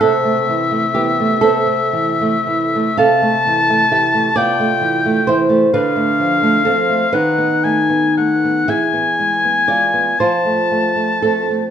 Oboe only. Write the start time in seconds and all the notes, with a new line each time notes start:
0.01 E5
2.98 A5
4.37 G5
5.74 F5
7.15 F#5
7.64 G#5
8.17 F#5
8.69 G#5
10.20 A5